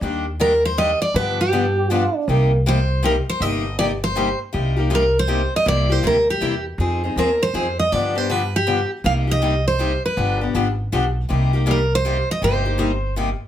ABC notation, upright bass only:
X:1
M:3/4
L:1/8
Q:"Swing" 1/4=160
K:Cm
V:1 name="Upright bass" clef=bass
E,,6 | G,,6 | C,,6 | G,,,6 |
C,,6 | C,,2 D,,2 =E,,2 | F,,2 E,,2 F,,2 | G,,6 |
C,,6 | G,,,2 A,,,2 =B,,,2 | C,,6 | G,,,6 |]